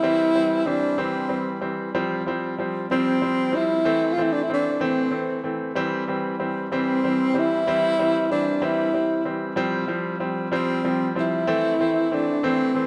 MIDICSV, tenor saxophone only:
0, 0, Header, 1, 2, 480
1, 0, Start_track
1, 0, Key_signature, -1, "major"
1, 0, Tempo, 635593
1, 28, Time_signature, 6, 3, 24, 8
1, 9719, End_track
2, 0, Start_track
2, 0, Title_t, "Tenor saxophone"
2, 0, Program_c, 0, 66
2, 0, Note_on_c, 0, 64, 118
2, 504, Note_on_c, 0, 62, 97
2, 515, Note_off_c, 0, 64, 0
2, 752, Note_on_c, 0, 60, 84
2, 763, Note_off_c, 0, 62, 0
2, 1290, Note_off_c, 0, 60, 0
2, 2197, Note_on_c, 0, 60, 102
2, 2683, Note_on_c, 0, 64, 120
2, 2694, Note_off_c, 0, 60, 0
2, 3122, Note_on_c, 0, 65, 96
2, 3133, Note_off_c, 0, 64, 0
2, 3196, Note_on_c, 0, 64, 88
2, 3207, Note_off_c, 0, 65, 0
2, 3265, Note_on_c, 0, 62, 95
2, 3277, Note_off_c, 0, 64, 0
2, 3346, Note_on_c, 0, 64, 87
2, 3358, Note_off_c, 0, 62, 0
2, 3402, Note_off_c, 0, 64, 0
2, 3424, Note_on_c, 0, 62, 99
2, 3631, Note_off_c, 0, 62, 0
2, 3654, Note_on_c, 0, 60, 79
2, 4152, Note_off_c, 0, 60, 0
2, 5082, Note_on_c, 0, 60, 97
2, 5579, Note_on_c, 0, 64, 127
2, 5591, Note_off_c, 0, 60, 0
2, 6276, Note_off_c, 0, 64, 0
2, 6281, Note_on_c, 0, 62, 98
2, 6527, Note_on_c, 0, 64, 98
2, 6539, Note_off_c, 0, 62, 0
2, 7058, Note_off_c, 0, 64, 0
2, 7963, Note_on_c, 0, 60, 92
2, 8405, Note_off_c, 0, 60, 0
2, 8457, Note_on_c, 0, 64, 105
2, 9169, Note_on_c, 0, 62, 91
2, 9180, Note_off_c, 0, 64, 0
2, 9404, Note_on_c, 0, 60, 100
2, 9415, Note_off_c, 0, 62, 0
2, 9719, Note_off_c, 0, 60, 0
2, 9719, End_track
0, 0, End_of_file